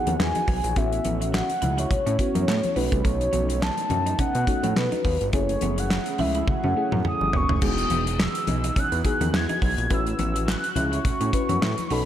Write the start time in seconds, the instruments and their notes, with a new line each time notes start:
Already playing: analog synth pad D#3 E3 B3 F#4 G#4, fm electric piano B3 D#4 F#4 G#4, soft synth lead F#5
0.07 analog synth bass D#2, clean electric guitar B3, closed hi-hat, high conga
0.19 analog synth bass E2, soft synth lead G#5, muted clean electric guitar stroke, snare, clap
0.35 clean electric guitar D#4, closed hi-hat, muted conga, high conga
0.48 analog synth bass B1, clean electric guitar B3, kick, open hi-hat
0.64 analog synth bass A#1, closed hi-hat
0.76 analog synth bass A1, analog synth pad A3 C#4, clean electric guitar A3, fm electric piano B3 C#4 E4 F#4, soft synth lead E5, kick, closed hi-hat
0.92 closed hi-hat
1.05 analog synth bass A1, clean electric guitar B3, closed hi-hat, high conga
1.21 muted clean electric guitar stroke, closed hi-hat
1.34 soft synth lead F#5, muted clean electric guitar stroke, snare, clap
1.50 closed hi-hat, muted conga
1.62 analog synth bass C#2, clean electric guitar E4, closed hi-hat, high conga, low conga
1.78 clean electric guitar E4, soft synth lead C#5, closed hi-hat
1.91 analog synth bass A2, kick, closed hi-hat, low conga
2.06 analog synth bass A2, clean electric guitar C#4, closed hi-hat
2.19 fm electric piano B3 C#4 E4 F#4, muted clean electric guitar stroke, kick, closed hi-hat
2.35 analog synth bass F#2, clean electric guitar B3, closed hi-hat, high conga
2.48 analog synth bass A2, muted clean electric guitar stroke, snare, clap, muted conga
2.63 closed hi-hat, muted conga, high conga
2.76 analog synth bass B1, fm electric piano A3 C#4 D#4 F#4, clean electric guitar B3, analog synth pad B3 D#4, soft synth lead B4, open hi-hat
2.92 analog synth bass C2, clean electric guitar A3, kick, closed hi-hat
3.04 analog synth bass B1, clean electric guitar A3, soft synth lead C#5, kick, closed hi-hat
3.21 closed hi-hat, muted conga
3.33 analog synth bass B1, clean electric guitar B3, closed hi-hat, high conga
3.49 muted clean electric guitar stroke, closed hi-hat
3.61 soft synth lead A5, muted clean electric guitar stroke, snare, clap, muted conga
3.77 closed hi-hat, muted conga
3.90 analog synth bass F#2, clean electric guitar D#4, closed hi-hat, high conga, low conga
4.06 clean electric guitar D#4, closed hi-hat
4.19 analog synth bass B2, clean electric guitar C#4, soft synth lead F#5, kick, closed hi-hat, muted conga, low conga
4.35 analog synth bass B2, closed hi-hat
4.47 fm electric piano A3 C#4 D#4 F#4, muted clean electric guitar stroke, kick, closed hi-hat
4.63 analog synth bass A2, clean electric guitar B3, closed hi-hat, high conga
4.76 analog synth bass B2, soft synth lead B4, snare, clap, muted conga
4.92 clean electric guitar D#4, closed hi-hat, high conga
5.04 analog synth bass D#2, clean electric guitar B3, kick, open hi-hat
5.21 analog synth bass G1, closed hi-hat
5.33 analog synth bass F#1, analog synth pad F#3 A3 C#4 E4 G#4, clean electric guitar A3, fm electric piano A3 C#4 E4 G#4, soft synth lead C#5, kick, closed hi-hat
5.49 closed hi-hat, muted conga
5.61 analog synth bass F#1, clean electric guitar B3, closed hi-hat, high conga
5.78 soft synth lead F#5, muted clean electric guitar stroke, closed hi-hat
5.90 muted clean electric guitar stroke, snare, clap
6.06 closed hi-hat
6.18 analog synth bass C#2, clean electric guitar E4, soft synth lead E5, open hi-hat, high conga, low conga
6.35 clean electric guitar E4, closed hi-hat
6.47 soft synth lead F#5, kick, high tom, low conga
6.64 analog synth bass F#2, clean electric guitar C#4, high tom
6.76 fm electric piano A3 C#4 E4 G#4, muted clean electric guitar stroke
6.92 analog synth bass F#2, clean electric guitar B3, mid tom, high conga
7.04 soft synth lead D#6, muted clean electric guitar stroke, mid tom, muted conga
7.21 analog synth bass G1, muted conga, high conga
7.33 analog synth bass F#1, clean electric guitar B3, soft synth lead C#6, floor tom
7.49 analog synth bass F1, clean electric guitar A3, floor tom
7.61 analog synth bass E1, analog synth pad E3 B3 D#4 F#4 G#4, clean electric guitar G#3, fm electric piano B3 D#4 F#4 G#4, soft synth lead D#6, kick, crash, muted conga
7.78 closed hi-hat
7.90 analog synth bass E1, clean electric guitar B3, closed hi-hat, high conga
8.07 muted clean electric guitar stroke, closed hi-hat
8.19 soft synth lead E6, muted clean electric guitar stroke, snare, clap, muted conga
8.35 closed hi-hat
8.47 analog synth bass B1, clean electric guitar D#4, closed hi-hat, high conga, low conga
8.64 clean electric guitar D#4, closed hi-hat
8.76 analog synth bass E2, clean electric guitar C#4, soft synth lead F#6, kick, closed hi-hat, muted conga, low conga
8.92 analog synth bass E2, closed hi-hat, muted conga
9.05 fm electric piano B3 D#4 F#4 G#4, soft synth lead F#6, muted clean electric guitar stroke, kick, closed hi-hat
9.21 analog synth bass D#2, clean electric guitar B3, closed hi-hat, high conga
9.33 analog synth bass E2, soft synth lead G#6, muted clean electric guitar stroke, snare, clap, muted conga
9.49 clean electric guitar D#4, closed hi-hat, high conga
9.62 analog synth bass B1, clean electric guitar B3, kick, open hi-hat
9.78 analog synth bass A#1, closed hi-hat
9.90 analog synth bass A1, analog synth pad A3 C#4 F#4, clean electric guitar A3, fm electric piano C#4 E4 F#4 B4, soft synth lead E6, kick, closed hi-hat, muted conga
10.07 closed hi-hat
10.19 analog synth bass A1, clean electric guitar B3, closed hi-hat, high conga
10.36 muted clean electric guitar stroke, closed hi-hat
10.48 soft synth lead F#6, muted clean electric guitar stroke, snare, clap
10.64 closed hi-hat
10.76 analog synth bass C#2, clean electric guitar E4, closed hi-hat, high conga, low conga
10.92 clean electric guitar E4, soft synth lead C#6, closed hi-hat
11.05 analog synth bass A2, kick, closed hi-hat, low conga
11.21 analog synth bass A2, clean electric guitar C#4, closed hi-hat
11.33 fm electric piano C#4 E4 F#4 B4, muted clean electric guitar stroke, kick, closed hi-hat
11.49 analog synth bass F#2, clean electric guitar B3, closed hi-hat, high conga
11.62 analog synth bass A2, muted clean electric guitar stroke, snare, clap, muted conga
11.78 closed hi-hat, muted conga, high conga
11.90 analog synth bass B1, clean electric guitar B3, analog synth pad B3 D#4, fm electric piano C#4 D#4 F#4 A4, soft synth lead B5, open hi-hat